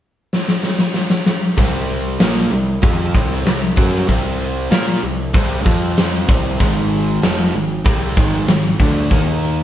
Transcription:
0.33 snare
0.48 snare
0.63 snare
0.79 snare
0.94 snare
1.10 snare
1.26 snare
1.57 C2 C3 G3 C4, kick, open hi-hat
1.89 open hi-hat
2.20 A#1 A#2 F3 A#3, snare, open hi-hat
2.50 C2 C3 G3, open hi-hat
2.82 F2 F3 C4 F4, kick, open hi-hat
3.14 C2 C3 G3 C4, kick, open hi-hat
3.31 snare
3.46 C2 C3 G3, snare, open hi-hat
3.76 F#2 F#3 C#4 F#4, kick, open hi-hat
3.95 snare
4.07 C2 C3 G3 C4, kick, open hi-hat
4.41 open hi-hat
4.70 A#2 A#3 F4 A#4, snare, open hi-hat
5.02 C2 C3 G3, open hi-hat
5.33 C2 C3 G3 C4, kick, open hi-hat
5.65 F2 F3 C4 F4, kick, open hi-hat
5.83 snare
5.98 snare, open hi-hat
6.27 C2 C3 G3 C4, kick, open hi-hat
6.59 G#1 G#2 D#3 G#3, kick, open hi-hat
6.93 open hi-hat
7.22 F1 F2 C3 F3, snare, open hi-hat
7.54 G#1 G#2 D#3, open hi-hat
7.84 C2 C3 G3 C4, kick, open hi-hat
8.17 G#1 G#2 D#3 G#3, kick, open hi-hat
8.48 G#1 G#2 D#3, snare, open hi-hat
8.80 D2 D3 A3 D4, kick, open hi-hat
9.11 D#2 D#3 A#3 D#4, kick, open hi-hat
9.43 open hi-hat

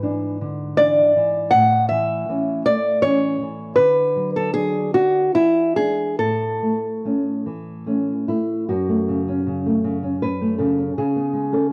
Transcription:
Already playing: G#2 B4
0.03 E3 D4
0.41 D3
0.77 E3 D4 D5
1.16 E3
1.51 A2 F#5
1.89 E3 E5
2.29 E3 C#4
2.66 A3 D5
3.02 E3 C#4 C#5
3.41 E3
3.76 D3 B4
4.16 F#3
4.36 A4
4.54 F#3 D4 G#4
4.94 D4 F#4
5.35 E3 E4
5.76 G#3 D4 G#4
6.19 A2 A4
6.63 A3
7.05 A3 C#4
7.46 E3
7.86 A3 C#4
8.28 A3 E4
8.69 F#2 F#4
8.89 A3
9.08 C#3
9.28 C#4
9.47 C#3
9.66 A3
9.84 C#3
10.03 C#4
10.22 B4
10.41 A3
10.58 C#3 A4
10.78 C#4
10.98 C#3 G#4
11.16 B3
11.33 G#3
11.52 C#4 A4

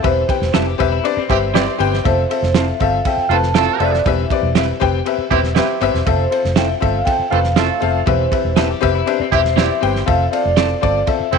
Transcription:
0.02 E1 E3 C4 G4 B4 C5 E5, kick, ride
0.28 C4 G4 B4 G5, kick, ride
0.41 E1, snare
0.52 F1 G3 C4 E4 G4 A4 B4 E5, snare, ride
0.67 G4
0.78 E1 C4 G4 B4 E5, kick, ride
0.92 E4
1.03 C4 D4 G4 B4 D5, ride
1.17 C4, muted fingered electric bass stroke
1.29 G1 C4 E4 G4 B4 E5, kick, ride
1.53 G3 C4 E4 G4 B4 D5, snare, ride
1.78 G1 C4 G4 B4 G5, ride
1.94 snare
2.04 F1 C4 F4 A4 C5 E5, kick, ride
2.29 C4 F4 A4 E5, ride
2.42 F1, snare
2.54 C4 E4 F4 A4 C5 E5 F5, snare, ride
2.80 G1 C4 F4 A4 E5 F5, kick, ride
3.05 C4 F4 A4 E5 G5, kick, ride
3.17 muted fingered electric bass stroke
3.29 F1 A3 C4 F4 A4 B4 A5, ride
3.43 snare
3.54 A3 C4 E4 F4 A4 C5 E5, snare, ride
3.80 F1 C4 F4 A4 D5 E5, ride
3.94 snare
4.05 E1 E3 C4 G4 B4 E5, kick, ride
4.30 C4 G4 B4 D5, kick, ride
4.43 E1
4.55 G3 C4 E4 G4 B4 E5, snare, ride
4.80 F1 C4 G4 B4 G5, kick, ride
5.05 C4 G4 B4 E5, ride
5.18 muted fingered electric bass stroke
5.30 E1 C4 E4 G4 B4 E5, kick, ride
5.44 snare
5.55 G3 C4 E4 G4 B4 E5, snare, ride
5.81 G1 C4 G4 B4 E5, ride
5.94 E1, snare
6.06 F1 C4 F4 A4 C5 E5, kick, ride
6.30 C4 F4 A4 C5, ride
6.44 F1, snare
6.55 C4 E4 F4 A4 C5 E5 G5, snare, ride
6.80 G1 C4 F4 A4 E5 F5, kick, ride
7.05 C4 F4 A4 E5 G5, kick, ride
7.19 muted fingered electric bass stroke
7.30 F1 A3 C4 F4 A4 B4 F5, ride
7.44 snare
7.55 A3 C4 E4 F4 A4 C5 E5, snare, ride
7.80 F1 C4 F4 A4 E5 F5, ride
8.06 E1 E3 C4 G4 B4 C5 E5, kick, ride
8.31 C4 G4 B4 E5, kick, ride
8.44 E1
8.55 B3 C4 E4 G4 A4 B4 E5, snare, ride
8.70 G4
8.81 F1 C4 G4 B4 E5, kick, ride
8.95 E4
9.06 C4 D4 G4 B4 E5, ride
9.20 C4, muted fingered electric bass stroke
9.31 E1 C4 E4 G4 B4 E5, kick, ride
9.45 snare
9.55 B3 C4 E4 G4 B4 D5, snare, ride
9.80 G1 C4 G4 B4 G5, ride
9.96 snare
10.06 F1 C4 F4 A4 E5 F5, kick, ride
10.26 E5
10.31 C4 F4 A4 D5 F5, ride
10.45 F1
10.56 C4 E4 F4 A4 C5 D5, snare, ride
10.81 G1 C4 F4 A4 D5, kick, ride
11.06 C4 F4 A4 E5, kick, ride
11.20 muted fingered electric bass stroke
11.31 F1 A3 C4 E4 F4 A4 E5 G5, ride

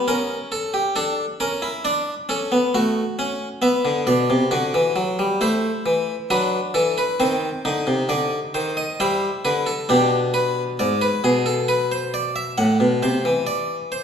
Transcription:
0.08 C#4 A#4
0.52 A4
0.74 G4
0.96 D4 A4
1.40 C#4 A#4
1.62 E4
1.85 D4 D5
2.29 C#4 A4
2.52 B3
2.74 A3 F#4
3.19 C#4
3.62 B3 E5
3.85 D3
4.07 B2 D5
4.30 C3
4.51 D3 F#4
4.74 E3
4.96 F#3
5.19 G3
5.41 A3 E4 C5
5.86 E3
6.30 F#3 D4 B4
6.74 E3 A4
6.98 B4
7.20 D#3 C4 C5
7.65 D3 D#4
7.87 C3
8.09 D3 D5
8.54 D#3 C5
8.77 D#5
9.00 G3 E4 C5
9.45 D3 B4
9.66 A4
9.89 B2 D4 G4
10.34 B4
10.79 G#2 D5
11.01 B4
11.24 B2 G#4
11.46 A4
11.68 B4
11.92 C5
12.14 D5
12.36 E5
12.58 A2 F#5
12.80 B2
13.03 C3 C5
13.25 E3
13.47 D5
13.92 C5

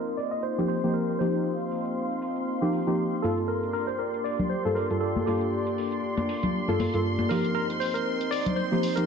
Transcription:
Already playing: F3 A#3 C4 D#4 F4 G4 A#4 D#5 C6
0.07 closed hi-hat
0.17 D5, open hi-hat
0.31 D#5, closed hi-hat
0.43 C5
0.58 F3 A#3 D#4 G4
0.68 C5, open hi-hat
0.83 F3 A#3 D#4 G4, closed hi-hat
0.94 A#4
1.19 F3 A#3 D#4 G4 C5 F5, open hi-hat
1.34 closed hi-hat
1.60 closed hi-hat
1.71 open hi-hat
1.85 closed hi-hat
2.11 closed hi-hat
2.22 open hi-hat
2.36 closed hi-hat
2.61 F3 A#3 D#4 G4
2.73 open hi-hat
2.87 F3 A#3 D#4 G4, closed hi-hat
3.22 G2 A#3 F4 A4, open hi-hat
3.38 closed hi-hat
3.48 A#3 D4 G4 A#4 D5
3.63 closed hi-hat
3.73 A#4, open hi-hat
3.87 C5, closed hi-hat
3.99 A#4
4.14 closed hi-hat
4.24 D5, open hi-hat
4.39 closed hi-hat, low conga
4.50 C5
4.65 G2 A#3 F4 A4
4.75 A#4, open hi-hat
4.90 G2 A#3 F4 A4, closed hi-hat
5.00 A4
5.16 high conga
5.26 G2 A#3 F4 G4 A4, open hi-hat
5.41 closed hi-hat
5.67 closed hi-hat
5.78 open hi-hat
5.92 closed hi-hat
6.17 closed hi-hat, high conga
6.29 open hi-hat
6.43 closed hi-hat, low conga
6.68 G2 A#3 F4 A4, high conga
6.80 open hi-hat, high conga
6.94 G2 A#3 F4 A4, closed hi-hat
7.19 high conga
7.29 F3 A#3 C4 D#4 G4 A#4 C5, open hi-hat
7.45 closed hi-hat
7.55 A#4
7.70 closed hi-hat
7.80 C5, open hi-hat
7.94 A#4, closed hi-hat
8.21 closed hi-hat
8.31 D5, open hi-hat
8.46 closed hi-hat, low conga
8.56 C5
8.72 F3 A#3 D#4 G4
8.83 open hi-hat
8.96 F3 A#3 D#4 G4 A#4, closed hi-hat

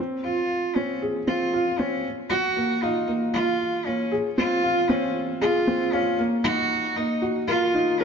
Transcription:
0.00 C4
0.24 F4
0.75 C4 C#4
1.02 G#4
1.27 C4 F4
1.53 F4
1.79 C4 C#4
2.30 F#4
2.56 A#3
2.83 D#4 F4
3.08 A#3
3.33 F4
3.86 A#3 C#4
4.12 G#4
4.38 C4 F4
4.63 F4
4.89 C4 C#4
5.41 F4 G#4
5.67 C4
5.93 C#4 F4
6.19 A#3
6.44 D#4 F#4
6.96 A#3 D#4
7.22 F#4
7.48 F4 A#4
7.74 D#4
7.99 C#4 A#4

